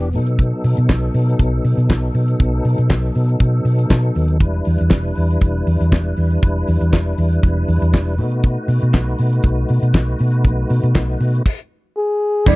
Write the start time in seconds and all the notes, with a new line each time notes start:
Already playing: E1 B3
0.13 B2 F#3 D#4 A4, open hi-hat
0.27 closed hi-hat
0.39 kick, closed hi-hat
0.64 B2, open hi-hat
0.77 B2, closed hi-hat
0.89 B1, kick, snare, clap, closed hi-hat
1.14 B2, open hi-hat
1.29 closed hi-hat
1.39 B1, kick, closed hi-hat
1.64 B2, open hi-hat
1.77 B2, closed hi-hat
1.89 B1, kick, snare, clap, closed hi-hat
2.14 B2, open hi-hat
2.28 closed hi-hat
2.40 B1, kick, closed hi-hat
2.65 B2, open hi-hat
2.78 B2, closed hi-hat
2.90 B1, kick, snare, clap, closed hi-hat
3.15 B2, open hi-hat
3.29 closed hi-hat
3.40 B2, kick, closed hi-hat
3.65 B2, open hi-hat
3.79 closed hi-hat
3.90 B2, kick, snare, clap, closed hi-hat
4.15 D#2, open hi-hat
4.28 closed hi-hat
4.40 E1 G3 D4 E4 B4, kick, closed hi-hat
4.65 E2, open hi-hat
4.78 E2, closed hi-hat
4.90 E1, kick, snare, clap, closed hi-hat
5.16 E2, open hi-hat
5.31 closed hi-hat
5.41 E1, kick, closed hi-hat
5.67 E2, open hi-hat
5.80 E2, closed hi-hat
5.92 E1, kick, snare, clap, closed hi-hat
6.17 E2, open hi-hat
6.30 closed hi-hat
6.43 E1, kick, closed hi-hat
6.68 E2, open hi-hat
6.81 E2, closed hi-hat
6.93 E1, kick, snare, clap, closed hi-hat
7.18 E2, open hi-hat
7.32 closed hi-hat
7.43 E1, kick, closed hi-hat
7.68 E2, open hi-hat
7.82 E2, closed hi-hat
7.93 E1, kick, snare, clap, closed hi-hat
8.18 B2 A3 D#4 F#4, open hi-hat
8.32 closed hi-hat
8.43 kick, closed hi-hat
8.68 B2, open hi-hat
8.81 B2, closed hi-hat
8.94 B1, kick, snare, clap, closed hi-hat
9.18 B2, open hi-hat
9.33 closed hi-hat
9.43 B1, kick, closed hi-hat
9.69 B2, open hi-hat
9.82 B2, closed hi-hat
9.94 B1, kick, snare, clap, closed hi-hat
10.19 B2, open hi-hat
10.32 closed hi-hat
10.44 B1, kick, closed hi-hat
10.70 B2, open hi-hat
10.83 B2, closed hi-hat
10.95 B1, kick, snare, clap, closed hi-hat
11.20 B2, open hi-hat
11.35 closed hi-hat
11.46 kick, crash
11.97 G#4
12.46 E1 E3 G3 B3 D4 E4 G4 B4 D5, kick, crash